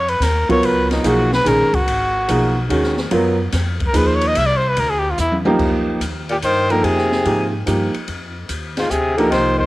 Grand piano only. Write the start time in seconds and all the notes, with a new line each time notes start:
0.49 F#3 B3 F4 A#4
1.04 F3 A#3 D#4 G#4
1.45 D#3 G#3 C#4 G#4
2.28 F3 A#3 D#4 G#4
2.69 D#3 G#3 C#4 F#4
3.11 F#3 B3 F4 A#4
3.93 F3 A#3 D#4 G#4
5.46 F3 A#3 D#4 G4
6.70 F3 A#3 D#4 G5
7.25 F3 A#3 D#4 G4
7.66 F3 A#3 D#4 G4
9.18 F3 A#3 D#4 G4